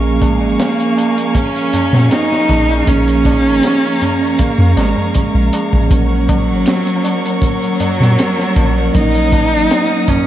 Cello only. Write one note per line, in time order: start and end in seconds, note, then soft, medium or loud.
0.24 0.63 G#3 medium
0.61 1.38 A#3 loud
1.37 2.12 C#4 loud
2.12 2.90 D#4 loud
2.88 4.41 C#4 loud
4.40 4.77 A#3 loud
4.78 5.13 G#3 medium
5.16 5.69 G#3 medium
6.30 7.39 F#3 loud
7.43 8.91 F#3 loud
8.95 10.11 D#4 loud
10.10 10.27 C#4 loud